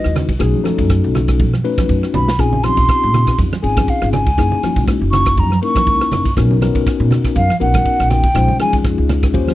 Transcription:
Already playing: tine electric piano G#3 D#4 E4 F#4 B4, flute D#5
0.04 upright bass D#2, cross-stick
0.16 cross-stick, ride, low conga
0.29 upright bass C2, kick, ride
0.39 upright bass B1, tine electric piano A3 C#4 D#4 F#4 G#4, kick, cross-stick, ride
0.54 high conga
0.64 tine electric piano A3 C#4 D#4 F#4 A4, cross-stick, ride, high conga
0.78 upright bass F#2, kick, ride
0.90 kick, cross-stick, ride
1.04 upright bass B1
1.15 cross-stick, ride, low conga
1.28 kick, cross-stick, ride
1.40 upright bass B2, kick, ride, high conga
1.53 cross-stick, high conga
1.64 tine electric piano A3 C#4 D#4 F#4 B4, ride
1.78 kick, cross-stick, ride, high conga
1.89 upright bass F#2, kick, ride
2.03 cross-stick
2.14 upright bass B1, flute B5, high tom, low conga
2.28 snare
2.38 upright bass A#1, tine electric piano C4 C#4 D#4 F4 G#4, flute G#5, kick, cross-stick, ride
2.53 low conga
2.63 tine electric piano C4 C#4 D#4 F4 G4, flute C6, cross-stick, ride, high conga
2.77 upright bass A#1, kick, ride
2.89 kick, cross-stick, ride
3.03 upright bass A#2
3.14 cross-stick, ride, low conga
3.27 kick, cross-stick, ride
3.38 upright bass F2, kick, ride, high conga
3.52 muted upright bass stroke, cross-stick, high conga
3.62 upright bass G#1, tine electric piano C4 C#4 D#4 F4 G#4, flute G#5, ride
3.77 kick, cross-stick, ride, high conga
3.88 flute F5, kick, ride
4.02 upright bass G#1, cross-stick
4.12 flute G#5, cross-stick, ride, low conga
4.27 upright bass C#2, kick, ride
4.38 upright bass F#1, tine electric piano A#3 C#4 D#4 E4 G#4, kick, cross-stick, ride
4.52 low conga
4.63 tine electric piano A#3 C#4 D#4 E4 F#4, muted upright bass stroke, cross-stick, ride, high conga
4.76 upright bass C#2, kick, ride
4.88 kick, cross-stick, ride
5.01 upright bass F#1
5.12 flute C#6, cross-stick, ride, low conga
5.26 kick, cross-stick, ride
5.37 upright bass F#2, flute A#5, kick, ride, high conga
5.50 cross-stick, high conga
5.62 tine electric piano A#3 C#4 D#4 E4 A#4, flute C#6, ride
5.75 kick, cross-stick, ride, high conga
5.87 upright bass C#2, kick, ride
6.01 cross-stick
6.12 upright bass F#1, cross-stick, ride, low conga
6.25 kick, ride
6.37 upright bass B1, tine electric piano B3 C#4 D#4 F#4 A#4, kick, cross-stick, ride
6.51 low conga
6.61 tine electric piano B3 C#4 D#4 F#4 A#4, cross-stick, ride, high conga
6.75 upright bass B1, kick, ride
6.86 kick, cross-stick, ride
7.00 upright bass B2
7.11 cross-stick, ride, low conga
7.25 kick, cross-stick, ride
7.36 upright bass F#2, flute F5, kick, ride, high conga
7.50 muted upright bass stroke, cross-stick, high conga
7.60 upright bass A#1, tine electric piano B3 C#4 D#4 F#4 A#4, flute F#5, ride
7.74 kick, cross-stick, ride, high conga
7.85 muted upright bass stroke, kick, ride
8.00 upright bass A#1, cross-stick
8.09 flute G5, cross-stick, ride, low conga
8.23 upright bass D#2, kick, ride
8.34 upright bass A#1, tine electric piano G#3 C#4 D#4 F4 C5, kick, cross-stick, ride
8.48 high conga, low conga
8.59 tine electric piano G#3 C#4 D#4 F4 G#4, flute G#5, cross-stick, ride, high conga
8.73 upright bass F2, kick, ride
8.84 kick, cross-stick, ride
8.98 upright bass C#2
9.09 cross-stick, ride, low conga
9.23 kick, cross-stick, ride
9.33 upright bass D#2, tine electric piano A#3 C#4 F4 G4 C5, kick, ride, high conga
9.48 cross-stick, high conga

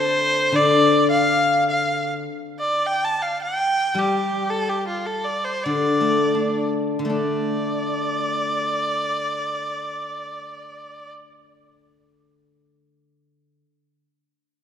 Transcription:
Already playing: guzheng D3, hammered dulcimer A3 C4 D4
0.00 dizi C5, erhu C5
0.42 dizi C5
0.52 guzheng D3, dizi D5, erhu D5
1.11 erhu F5, dizi F5
1.69 dizi F5, erhu F5
2.60 erhu D5
2.87 erhu G5
3.05 erhu A5
3.22 erhu F5
3.42 erhu G5
3.94 guzheng G3
3.99 erhu G4
4.50 erhu A4
4.69 erhu G4
4.88 erhu F4
5.06 erhu A4
5.24 erhu D5
5.45 erhu C5
5.64 guzheng D3, erhu D5
6.01 guzheng A3
6.35 guzheng D4
6.99 guzheng D3
7.05 guzheng A3
7.10 guzheng D4, erhu D5

